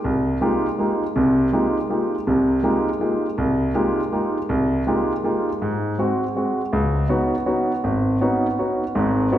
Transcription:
0.04 0.36 C2 medium
0.41 0.65 G#3 medium
0.41 0.65 A#3 medium
0.41 0.65 D#4 medium
0.41 0.66 F4 soft
0.41 0.66 G4 medium
0.78 1.02 G#3 soft
0.78 1.03 A#3 soft
0.78 1.03 D#4 soft
0.78 1.03 F4 soft
0.78 1.03 G4 soft
1.16 1.47 C2 medium
1.16 1.47 C3 medium
1.52 1.77 G#3 medium
1.52 1.77 A#3 soft
1.52 1.77 D#4 soft
1.52 1.77 F4 soft
1.52 1.77 G4 medium
1.90 2.14 G#3 soft
1.90 2.14 A#3 soft
1.90 2.14 D#4 soft
1.90 2.14 F4 soft
1.90 2.14 G4 soft
2.27 2.59 C2 medium
2.27 2.59 C3 medium
2.63 2.88 G#3 medium
2.63 2.88 A#3 soft
2.63 2.88 D#4 soft
2.63 2.88 F4 soft
2.63 2.88 G4 medium
3.00 3.25 G#3 soft
3.00 3.25 A#3 soft
3.00 3.25 D#4 soft
3.00 3.25 F4 soft
3.00 3.25 G4 soft
3.38 3.70 C2 medium
3.74 3.99 G#3 medium
3.74 3.99 A#3 soft
3.74 4.00 D#4 soft
3.74 3.99 F4 medium
3.74 4.00 G4 medium
4.12 4.37 G#3 soft
4.12 4.37 A#3 soft
4.12 4.37 D#4 soft
4.12 4.37 F4 soft
4.12 4.37 G4 medium
4.49 4.81 C2 medium
4.87 5.11 G#3 medium
4.87 5.11 A#3 soft
4.87 5.11 D#4 soft
4.87 5.12 F4 medium
4.87 5.12 G4 medium
5.24 5.48 G#3 soft
5.24 5.48 A#3 soft
5.24 5.49 D#4 soft
5.24 5.49 F4 soft
5.24 5.49 G4 medium
5.62 5.93 G#2 medium
5.98 6.23 G#3 soft
5.98 6.23 C4 medium
5.98 6.23 F#4 medium
6.36 6.60 G#3 soft
6.36 6.60 C4 soft
6.36 6.61 F#4 soft
6.73 7.04 C#2 medium
7.09 7.34 B3 medium
7.09 7.34 C#4 soft
7.09 7.34 D#4 soft
7.09 7.34 F#4 medium
7.46 7.71 B3 soft
7.46 7.71 C#4 soft
7.46 7.71 D#4 soft
7.46 7.71 F#4 medium
7.84 8.16 G#1 medium
8.21 8.46 B3 medium
8.21 8.46 C#4 medium
8.21 8.46 D#4 medium
8.21 8.46 F#4 medium
8.59 8.83 B3 soft
8.59 8.83 C#4 soft
8.59 8.83 D#4 soft
8.59 8.83 F#4 medium
8.95 9.27 G#1 medium
8.95 9.27 G#2 medium
9.32 9.38 B3 medium
9.32 9.38 C#4 medium
9.32 9.38 D#4 medium
9.32 9.38 F#4 medium

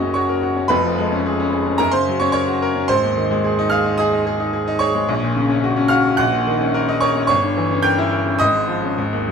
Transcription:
0.00 0.66 F#1 medium
0.00 0.67 F#2 medium
0.00 0.73 C#3 medium
0.00 0.73 A#3 medium
0.00 0.02 C#4 medium
0.00 0.24 C#4 medium
0.00 0.16 F#4 medium
0.00 0.29 A#4 medium
0.00 0.15 C#5 medium
0.00 0.11 D#5 loud
0.00 0.72 F#5 medium
0.00 0.14 C#6 loud
0.00 0.14 D#6 loud
0.00 0.73 F#6 loud
0.14 0.38 F#4 medium
0.14 0.66 C#5 medium
0.14 0.70 C#6 loud
0.29 0.51 A#4 medium
0.43 0.65 F#4 medium
0.56 0.70 C#4 medium
0.68 1.77 F1 medium
0.68 1.77 F2 loud
0.68 1.76 B4 medium
0.68 1.79 B5 loud
0.84 1.06 F3 medium
0.98 1.20 G#3 medium
1.12 1.34 C#4 medium
1.26 1.48 G#4 medium
1.40 1.61 C#4 medium
1.52 1.75 G#4 medium
1.67 1.81 C#4 medium
1.78 2.86 F#2 medium
1.78 1.93 A#4 medium
1.78 1.93 A#5 loud
1.91 2.16 C#3 medium
1.91 2.19 C5 medium
1.91 2.20 C6 loud
2.08 2.30 F#3 medium
2.20 2.43 C#4 medium
2.20 2.32 C#5 medium
2.20 2.31 C#6 loud
2.32 2.57 A#4 medium
2.32 2.85 C#5 loud
2.32 2.88 C#6 loud
2.48 2.70 F#4 medium
2.62 2.84 A#4 medium
2.76 2.89 C#4 medium
2.88 5.05 G#1 medium
2.88 3.67 C5 loud
2.88 3.71 C6 loud
3.03 3.25 D#2 medium
3.17 3.38 D#3 medium
3.31 3.52 G#3 medium
3.44 3.66 G#4 medium
3.59 3.80 D#4 loud
3.70 3.94 G#4 medium
3.70 3.97 F5 medium
3.70 3.98 F6 loud
3.86 4.07 D#4 medium
3.98 4.21 G#4 loud
3.98 4.77 D#5 medium
3.98 4.80 D#6 loud
4.13 4.34 D#4 medium
4.27 4.48 G#4 medium
4.40 4.62 D#4 medium
4.53 4.75 G#4 medium
4.68 4.89 D#4 loud
4.79 5.03 G#4 medium
4.79 5.86 C#5 loud
4.79 5.89 C#6 loud
4.95 5.08 G#3 medium
5.09 6.15 A#1 loud
5.23 5.45 A#2 medium
5.36 5.58 C#3 medium
5.49 5.71 C#4 medium
5.64 5.85 F#4 medium
5.77 5.99 C#4 medium
5.88 6.12 F#4 medium
5.88 6.15 F5 loud
5.88 6.17 F6 loud
6.05 6.18 C#4 medium
6.17 7.26 A#1 loud
6.17 6.97 F#5 loud
6.17 7.01 F#6 loud
6.33 6.54 A#2 medium
6.47 6.68 D#3 medium
6.61 6.82 C#4 medium
6.74 6.96 A#4 medium
6.88 7.10 D#4 medium
7.01 7.24 A#4 medium
7.01 7.27 C#5 medium
7.01 7.26 C#6 loud
7.16 7.29 C#4 medium
7.27 8.38 G1 loud
7.27 7.80 C#5 loud
7.27 7.84 C#6 loud
7.43 7.65 G2 medium
7.57 7.79 E3 medium
7.71 7.93 C#4 medium
7.82 8.07 A#4 medium
7.82 8.37 G5 loud
7.82 8.40 G6 loud
7.98 8.21 E4 medium
8.13 8.35 A#4 medium
8.27 8.41 C#4 medium
8.39 8.96 G#1 medium
8.39 9.32 D#5 loud
8.39 9.32 D#6 loud
8.55 8.78 G#2 medium
8.68 8.92 F3 medium
8.83 8.98 C#4 medium
8.98 9.32 G#1 loud
9.13 9.32 D#2 medium
9.27 9.32 F#3 medium

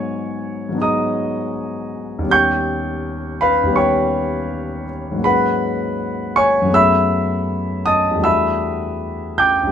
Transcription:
0.00 0.68 G#2 soft
0.00 0.70 F#3 soft
0.00 0.73 B3 soft
0.00 0.75 D#4 soft
0.00 0.77 G#4 soft
0.00 0.78 C#5 medium
0.00 0.78 G#5 medium
0.00 0.81 C#6 medium
0.69 2.21 G#2 soft
0.69 2.23 F#3 soft
0.75 2.23 B3 soft
0.75 2.26 D#4 soft
0.80 2.27 G#4 soft
0.80 2.28 D#5 medium
0.80 2.28 A#5 medium
0.80 2.32 D#6 medium
2.19 3.62 D#2 medium
2.19 3.65 G3 soft
2.25 3.68 B3 soft
2.25 3.70 C#4 soft
2.30 3.72 G4 soft
2.30 3.37 G5 medium
2.30 3.37 C#6 medium
2.30 3.41 G6 loud
3.41 3.75 B4 medium
3.41 3.75 F5 medium
3.41 3.77 B5 loud
3.63 5.14 D#2 soft
3.63 5.16 G3 soft
3.69 5.17 B3 soft
3.69 5.19 C#4 soft
3.75 5.20 G4 soft
3.75 4.84 C#5 medium
3.75 4.84 G5 medium
3.75 4.87 C#6 medium
5.12 6.64 G#2 medium
5.12 6.63 F#3 soft
5.18 6.67 A#3 soft
5.18 6.68 C#4 soft
5.23 6.70 G#4 soft
5.23 6.34 B4 medium
5.23 6.34 F#5 medium
5.23 6.37 B5 medium
6.36 6.72 C#5 medium
6.36 6.72 G#5 medium
6.36 6.74 C#6 loud
6.62 8.14 F#2 medium
6.62 8.15 F#3 soft
6.67 8.15 A3 soft
6.67 8.18 B3 soft
6.73 8.20 G#4 soft
6.73 7.82 E5 medium
6.73 7.83 B5 medium
6.73 7.86 E6 loud
7.86 8.22 D#5 medium
7.86 8.22 A5 medium
7.86 8.24 D#6 loud
8.11 9.65 E2 soft
8.11 9.65 G3 soft
8.16 9.68 A3 soft
8.16 9.70 D4 soft
8.22 9.71 F#4 soft
8.22 9.36 E5 medium
8.22 9.35 B5 medium
8.22 9.39 E6 medium
9.38 9.72 G5 medium
9.38 9.72 D6 medium
9.38 9.72 G6 loud
9.63 9.72 D2 soft
9.63 9.72 G3 soft

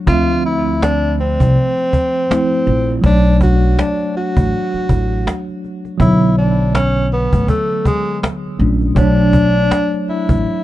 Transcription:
0.07 1.36 D2 loud
0.07 2.25 F3 medium
0.07 2.26 A3 medium
0.07 2.27 C4 medium
0.07 0.47 F4 medium
0.07 cajon bass loud
0.12 2.28 E5 medium
0.29 cajon slap soft
0.46 0.78 E4 medium
0.46 cajon slap soft
0.82 1.16 D4 medium
0.82 cajon slap medium
0.82 cajon slap loud
1.04 cajon slap soft
1.18 3.01 C4 medium
1.18 cajon slap soft
1.40 1.55 C2 medium
1.40 cajon bass medium
1.56 cajon slap soft
1.77 cajon slap soft
1.93 cajon bass medium
2.29 3.04 F3 soft
2.29 3.02 A3 soft
2.29 3.05 C4 soft
2.29 3.05 E4 medium
2.29 cajon slap medium
2.29 cajon slap loud
2.52 cajon slap soft
2.67 3.02 A#1 medium
2.67 cajon slap soft
2.88 cajon slap soft
3.02 3.74 B1 loud
3.02 5.95 F#3 medium
3.02 5.96 A3 medium
3.02 5.97 C#5 medium
3.02 cajon bass loud
3.06 3.38 D4 loud
3.06 5.98 D4 medium
3.41 3.75 F#4 medium
3.41 cajon bass loud
3.79 4.12 D4 medium
3.79 cajon slap medium
3.79 cajon slap loud
4.00 cajon slap soft
4.15 5.45 F#4 medium
4.15 cajon slap soft
4.37 4.51 A1 medium
4.37 cajon bass medium
4.53 cajon slap soft
4.73 muted upright bass stroke soft
4.73 cajon slap soft
4.89 5.24 A1 medium
4.89 cajon bass medium
5.27 cajon slap medium
5.27 cajon slap loud
5.49 cajon slap soft
5.64 cajon slap soft
5.85 cajon slap soft
5.98 7.29 B1 loud
5.98 8.54 F#3 medium
5.98 8.55 B3 medium
5.98 6.34 E4 medium
5.98 cajon bass loud
6.02 8.57 D3 medium
6.02 8.56 C#5 medium
6.22 cajon slap soft
6.38 6.71 D4 medium
6.38 cajon slap soft
6.75 7.08 C#4 medium
6.75 cajon slap medium
6.75 cajon slap loud
6.97 cajon slap soft
7.11 7.45 B3 medium
7.11 cajon slap soft
7.33 7.47 A1 medium
7.33 cajon bass medium
7.48 7.88 A3 medium
7.48 cajon bass medium
7.69 cajon slap soft
7.85 8.19 G#3 medium
7.85 cajon bass medium
8.23 cajon slap medium
8.23 cajon slap loud
8.45 cajon slap soft
8.59 8.94 A#1 medium
8.59 8.94 F#3 soft
8.59 8.96 A3 soft
8.59 8.97 C#4 soft
8.59 8.98 D4 medium
8.59 cajon slap soft
8.81 cajon slap soft
8.95 9.66 B1 loud
8.95 10.64 F#3 medium
8.95 10.64 A3 medium
8.95 10.04 D4 loud
8.95 10.64 C#5 medium
8.95 cajon bass loud
9.01 10.64 D4 medium
9.18 cajon slap soft
9.33 cajon bass loud
9.71 cajon slap medium
9.71 cajon slap loud
9.93 cajon slap soft
10.08 10.64 E4 medium
10.08 cajon slap soft
10.29 10.44 A1 medium
10.29 cajon bass medium
10.45 cajon slap soft

